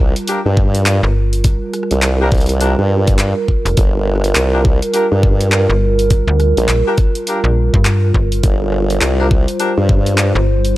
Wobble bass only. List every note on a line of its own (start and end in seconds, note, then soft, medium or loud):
0.00 0.14 C2 medium
0.46 1.01 G2 medium
1.91 2.76 C2 medium
2.79 3.34 G2 medium
3.78 4.34 G1 medium
4.36 4.80 C2 medium
5.12 5.67 G2 loud
6.57 6.67 A#1 medium
8.44 9.00 G1 medium
9.02 9.46 C2 medium
9.78 10.33 G2 medium